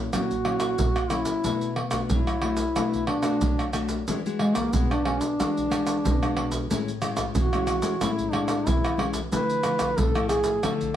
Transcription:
Already playing: A#2
0.13 A#2 F#3 C#4 E4 F#4, pandeiro, tamborim, maracas, surdo
0.31 pandeiro, maracas, surdo
0.45 F#3 C#4 E4, pandeiro, tamborim
0.60 pandeiro, tamborim, maracas
0.78 A#2, pandeiro, maracas, surdo
0.96 pandeiro, tamborim, maracas
1.10 F#3 C#4 E4, pandeiro, tamborim, maracas
1.25 pandeiro, maracas, surdo
1.44 B2 A3 D4 F#4, pandeiro, maracas, surdo
1.61 pandeiro, maracas
1.76 pandeiro, tamborim
1.91 A3 D4 F#4, pandeiro, tamborim, maracas, surdo
2.10 F#3 E4, pandeiro, maracas, surdo
2.27 pandeiro, tamborim, maracas
2.42 A3 D4 F#4, pandeiro, tamborim
2.57 pandeiro, maracas, surdo
2.76 B2 A3 D4 F#4, pandeiro, tamborim, maracas, surdo
2.93 pandeiro, maracas, surdo
3.07 D4, pandeiro, tamborim
3.23 A3 D4 F#4, pandeiro, tamborim, maracas
3.41 F#3, pandeiro, maracas, surdo
3.59 pandeiro, tamborim, maracas
3.73 A3 D4 F#4, pandeiro, tamborim, maracas
3.89 pandeiro, maracas, surdo
4.08 E3 G#3 D4 F#4, pandeiro, maracas, surdo
4.26 G#3 D4 F#4, pandeiro, maracas
4.39 G#3, pandeiro, tamborim
4.54 A#3, pandeiro, tamborim, maracas, surdo
4.73 B2 G#3 B3 D4 F#4, pandeiro, maracas, surdo
4.91 D4, pandeiro, tamborim, maracas
5.05 G#3 C#4 D4 F#4, pandeiro, tamborim
5.20 D4, pandeiro, maracas, surdo
5.39 E3 G#3 D4 F#4, pandeiro, tamborim, maracas, surdo
5.57 pandeiro, maracas, surdo
5.70 G#3 D4 F#4, pandeiro, tamborim, maracas
5.87 pandeiro, tamborim, maracas
6.04 B2, pandeiro, maracas, surdo
6.22 G#3 D4 F#4, pandeiro, tamborim, maracas
6.37 pandeiro, tamborim
6.52 pandeiro, maracas, surdo
6.70 A2 G#3 C#4 E4, pandeiro, maracas, surdo
6.88 pandeiro, maracas
7.02 G#3 C#4 E4, pandeiro, tamborim, maracas
7.17 pandeiro, tamborim, maracas, surdo
7.35 E3 F#4, pandeiro, maracas, surdo
7.53 G#3 C#4 E4, pandeiro, tamborim, maracas
7.67 pandeiro, tamborim, maracas
7.82 G#3 C#4 E4, pandeiro, maracas, surdo
8.01 A2 G#3 C#4 E4, pandeiro, tamborim, maracas, surdo
8.19 pandeiro, maracas, surdo
8.31 G#3 D4 E4, pandeiro, tamborim
8.48 pandeiro, tamborim, maracas
8.66 E3 E4, pandeiro, maracas, surdo
8.84 pandeiro, tamborim, maracas
8.97 G#3 C#4 E4, pandeiro, tamborim, surdo
9.14 pandeiro, maracas, surdo
9.32 D3 F3 A3 E4 B4, pandeiro, maracas, surdo
9.50 pandeiro, maracas
9.63 F3 A3 E4, pandeiro, tamborim, maracas
9.79 pandeiro, tamborim, maracas, surdo
9.98 A2 A4, pandeiro, maracas, surdo
10.14 F3 A3 E4, pandeiro, tamborim, maracas
10.29 G#4, pandeiro, tamborim, maracas
10.44 pandeiro, maracas, surdo
10.63 D3 F3 A3 E4 A4, pandeiro, tamborim, maracas, surdo
10.81 pandeiro, maracas, surdo

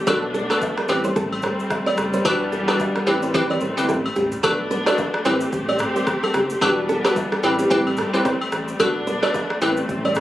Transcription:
Already playing: A3
0.07 B1 B3 D4 F#4 A4 B4, kick, high agogo, shaker
0.34 A4, shaker
0.50 D4 F#4 A4 B4, cross-stick, high agogo, shaker
0.62 kick, low woodblock, shaker
0.77 B4, cross-stick
0.88 A1 G3 C4 E4 G4 B4, high agogo, shaker
1.04 C5, shaker
1.16 A1 A4, kick, shaker
1.33 high agogo
1.42 C5, cross-stick, mid tom, shaker
1.60 shaker
1.70 kick, cross-stick, low woodblock, shaker
1.86 D5, high agogo
1.97 F#1, cross-stick, shaker
2.13 C5, shaker
2.25 E1 E3 B3 D4 F#4 G4 B4, kick, high agogo, shaker
2.52 A4, shaker
2.68 D4 F#4 G4 B4, cross-stick, high agogo, shaker
2.80 kick, low woodblock, shaker
2.96 B4, cross-stick
3.07 A1 A3 C4 E4 G4 B4, high agogo, shaker
3.23 C5, shaker
3.34 C4 E4 G4 B4, kick, high tom, shaker
3.50 D5, high tom, high agogo
3.60 A1 C5, shaker
3.77 G1 C4 E4 G4 B4, shaker
3.89 A1 A4, kick, low woodblock, shaker
4.06 high agogo
4.16 A1 G4, floor tom, shaker
4.32 floor tom, shaker
4.43 B1 A3 B3 D4 F#4 A4 B4, kick, high agogo, shaker
4.71 B4, shaker
4.86 D4 F#4 A4 B4 D5, cross-stick, high agogo, shaker
4.98 B4, kick, low woodblock, shaker
5.14 cross-stick
5.25 A1 C4 E4 G4 B4 C5, high agogo, shaker
5.41 shaker
5.53 A1, kick, shaker
5.69 D5, high agogo
5.79 cross-stick, mid tom, shaker
5.96 C5, shaker
6.07 kick, cross-stick, shaker
6.23 A4, high agogo
6.34 F#1 G4, cross-stick, shaker
6.50 shaker
6.61 E1 E3 G3 B3 D4 F#4 G4 B4, kick, high agogo, shaker
6.89 A4, shaker
7.05 D4 F#4 G4 B4, cross-stick, high agogo, shaker
7.16 kick, low woodblock, shaker
7.32 A4, cross-stick
7.43 A1 A3 C4 E4 G4 B4, high agogo, shaker
7.59 G4, shaker
7.70 A1 C4 E4 G4 B4, kick, shaker
7.87 high agogo
7.97 A4, cross-stick, mid tom, shaker
8.13 C4 E4 G4 B4 C5, shaker
8.25 C5, kick, cross-stick, shaker
8.41 high agogo
8.52 A1, cross-stick, shaker
8.68 shaker
8.80 B1 A3 B3 D4 F#4 A4 B4, kick, high agogo, shaker
9.07 B4, shaker
9.23 D4 F#4 A4 B4 D5, cross-stick, high agogo, shaker
9.34 B4, kick, low woodblock, shaker
9.50 cross-stick
9.61 A1 G3 C4 E4 G4 B4 C5, high agogo, shaker
9.77 shaker
9.89 A1, kick, shaker
10.05 D5, high agogo
10.15 cross-stick, mid tom, shaker

